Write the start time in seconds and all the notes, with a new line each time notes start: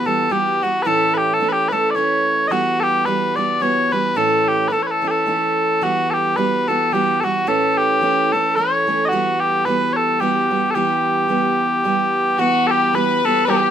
0.06 E3 G3 B3 F#4 A4
0.29 E3 G3 B3 F#4 G4
0.61 E3 G3 B3 F#4
0.82 A2 E3 A3 C#4 B4
0.87 E4 A4
1.14 G4 B4
1.34 A4
1.40 E3 A3 C#4 E4
1.49 G4 B4
1.68 E3 A3 B4
1.73 C#4 E4 A4
1.91 D5
1.95 E3 A3 C#4 E4 C#5
2.48 E3 G3 F#4 D#5
2.52 B3 F#4
2.80 G4 A4
3.05 E3 G3 B3 F#4 B4
3.36 E3 G3 B3 F#4 D5
3.60 E3 G3 B3 F#4 C#5
3.91 E3 G3 B3 F#4 B4
4.15 A2 E3 A3 C#4 E4 A4
4.48 G4
4.68 E3 A3 B4
4.72 E4 A4
4.83 C#5
4.87 A4 B4
5.02 E3 A3 C#4 E4
5.08 G4 A4
5.26 E3 A3 C#4 E4
5.82 E3 G3 B3 F#4
6.10 G4 A4
6.36 E3 G3 B3 F#4 B4
6.68 E3 G3 B3 F#4 A4
6.92 E3 G3 B3 F#4 G4
7.20 E3 G3 F#4 A4
7.25 B3 F#4
7.47 A2 E3 A3 C#4 E4 A4
7.77 G4
8.01 E3 A3 C#4 E4
8.32 E3 A3 C#4 E4 A4
8.56 E3 A3 C#4 E4 C#5
8.87 E3 A3 C#4 E4
9.05 F#4 D#5
9.11 E3 G3 B3 F#4
9.40 G4
9.65 E3 G3 B3 F#4 B4
9.93 A4 C#5
10.20 E3 G3 B3 F#4 G4
10.50 E3 G3 B3 F#4
10.71 A4
10.75 E3 G3 B3 G4
11.28 E3 G3 B3 G4
11.84 E3 G3 B3 G4
12.37 E3 G3 B3 F#4
12.67 G4 A4
12.92 E3 G3 B3 B4
12.96 F#4
13.23 E3 G3 B3 F#4 A4
13.45 E3 G3 B3 G4 B4
13.50 F#4 G4